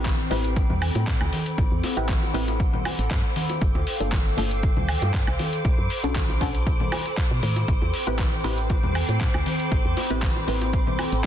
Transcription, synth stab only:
Already playing: C4 E4 G4 B4
0.30 C4 E4 G4 B4
1.97 C4 E4 G4 B4
2.34 C4 E4 G4 B4
4.00 A#3 D4 F4 A4
4.37 A#3 D4 F4 A4
6.03 C#4 D4 F#4 A4
6.41 C#4 D4 F#4 A4
8.07 C4 E4 G4 B4
8.44 C4 E4 G4 B4
10.10 C4 E4 G4 B4
10.47 C4 E4 G4 B4

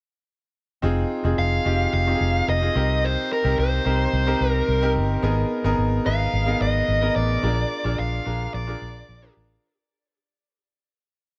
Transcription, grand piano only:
0.82 C4 D#4 F4 G#4
1.24 C4 D#4 F4 G#4
1.65 C4 D#4 F4 G4
2.07 C4 D#4 F4 G4
2.14 G#4
2.61 C4 D#4 F4 G#4
2.75 C4 D#4 G4 A#4
3.44 C4 D#4 G4 A#4
3.85 C4 D#4 G4 A#4
4.26 C4 D#4 G4 A#4
4.81 C4 D#4 G4 A#4
5.22 B3 D#4 G#4 A#4
5.64 B3 D#4 G#4 A#4
6.05 B3 D#4 G#4 B4
6.46 B3 D#4 G#4 A#4
7.01 B3 D#4 G#4 A#4
7.43 D4 F4 G#4 A#4
7.84 D4 F4 G#4 A#4
8.25 D4 F4 G#4 A#4
8.67 D4 F4 G#4 A#4
9.22 D4 F4 G#4 A#4

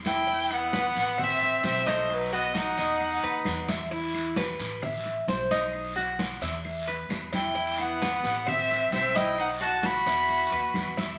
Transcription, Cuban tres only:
0.27 E4
0.73 B4
1.18 E5
1.63 C5
1.86 D#4
2.33 F#4
2.78 D#5
3.23 B4
3.68 E5
3.91 E4
4.37 B4
4.83 E5
5.28 C5
5.51 D#4
5.96 F#4
6.42 E5
6.88 B4
7.33 E5
7.55 E4
8.02 B4
8.47 E5
8.92 C5
9.15 D#4
9.61 F#4
10.07 E5
10.52 B4
10.97 E5

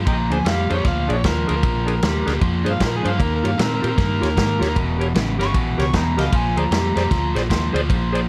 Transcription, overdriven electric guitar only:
0.06 A#2 F3
0.45 A#2 G3
0.70 A#2 G3
0.84 A#2 F3
1.24 A#2 F3
1.49 A#2 F3
1.63 A#2 F3
2.03 A#2 G3
2.27 A#2 G3
2.41 A#2 F3
2.80 A#2 F3
3.04 A#2 F3
3.18 D#3 A#3
3.58 D#3 C4
3.83 D#3 C4
3.98 D#3 A#3
4.36 D#3 A#3
4.62 D#3 A#3
4.76 E2 B2
5.14 E2 C#3
5.39 E2 C#3
5.54 E2 B2
5.93 E2 B2
6.17 E2 B2
6.32 A#2 F3
6.71 A#2 G3
6.95 A#2 G3
7.10 A#2 F3
7.50 A#2 F3
7.74 A#2 F3
7.89 A#2 F3

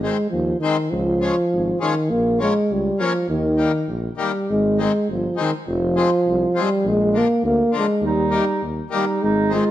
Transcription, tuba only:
Already playing: G#1
0.33 D#2
0.93 C#2
1.52 G#1
2.11 A#1
2.70 C#2
3.28 D#2
3.88 A#1
4.50 G#1
5.08 G1
5.67 F1
6.26 C2
6.84 A#1
7.43 D2
8.01 D#2
8.61 D#2
9.23 G#1

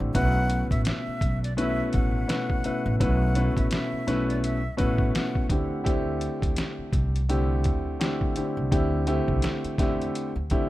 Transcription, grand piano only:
Already playing: D3 A3 C4 E4 G4
0.14 B2 A3 C#4 E4 B4
1.57 B2 A3 C#4 E4 B4
2.28 B2 A3 C#4 E4 B4
2.65 B2 A3 C#4 E4 B4
3.00 B2 A3 C#4 E4 B4
3.35 B2 A3 C#4 E4 B4
4.07 B2 A3 C#4 E4 B4
4.77 B2 A3 C#4 E4 B4
5.50 D3 A3 C4 E4 G4
5.84 D3 A3 C4 E4 G4
7.29 D3 A3 C4 E4 G4
7.99 D3 A3 C4 E4 G4
8.36 D3 A3 C4 E4 G4
8.71 D3 A3 C4 E4 G4
9.07 D3 A3 C4 E4 G4
9.79 D3 A3 C4 E4 G4
10.51 D3 A3 C4 E4 G4

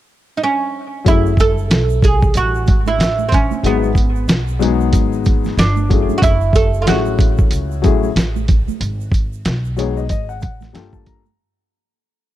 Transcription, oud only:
0.37 D#4
0.44 C#4
1.08 E4
1.40 A4
2.04 G#4
2.37 F#4
2.88 E4
3.29 C4
3.34 C#4
3.66 B3
5.59 D4
6.18 F#4
6.23 E4
6.56 A4
6.82 F4
6.88 F#4

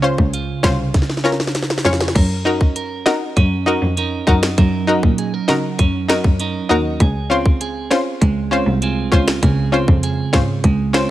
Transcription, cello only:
0.18 C#2
0.64 C2
1.85 F2
2.15 F#2
3.37 F#2
3.82 F2
4.27 F#2
4.58 F#2
5.03 A#2
5.49 C#3
5.79 F#2
6.24 F#2
6.70 D#2
7.00 C#2
8.22 C#2
8.67 C2
9.12 C#2
9.43 C#2
9.88 F2
10.33 G#2
10.64 C#2

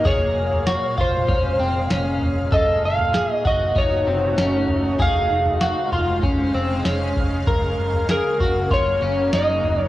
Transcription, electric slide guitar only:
0.07 C#5
1.01 C5
2.54 D#5
2.85 F5
3.33 D#5
3.47 D#5
3.78 C#5
5.02 F5
8.11 A#4
8.73 C#5
9.35 D#5
9.83 C#5

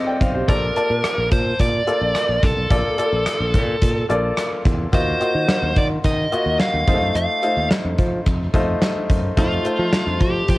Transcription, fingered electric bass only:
0.21 B1
0.49 A#1
0.90 A#2
1.18 A#1
1.32 A#2
1.60 A#2
2.01 A#1
2.29 A#1
2.43 C2
2.57 B1
2.71 A#1
3.13 A#1
3.40 A#1
3.54 A#2
3.82 A#2
4.10 A#1
4.65 E2
4.93 D#2
5.35 D#3
5.62 D#2
5.76 D#3
6.04 D#3
6.46 D#2
6.74 D#2
6.88 F2
7.01 F#2
7.15 F2
7.57 D#2
7.85 F2
7.99 F3
8.26 F2
8.54 F2
9.10 F#2
9.37 F2
9.79 F3
10.07 F2
10.21 F3
10.49 F3

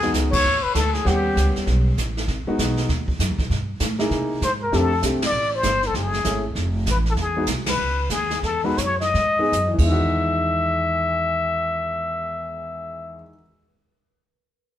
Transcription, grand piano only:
0.02 G#3 B3 D#4 F#4
1.05 G3 B3 C#4 F#5
2.47 G#3 B3 D#4 F#4
3.99 A#3 D#4 E4 G#4
4.72 A3 C4 D4 G4
5.02 A3 C4 D4 G4
6.24 A3 C#4 E4 G#4
7.36 G#3 B3 D#4 F#4
8.64 G#3 B3 D#4 F#4
9.39 G#3 B3 D#4 G#4
9.67 E2
9.74 E3
9.79 G#3
9.86 D#3
9.92 F#4

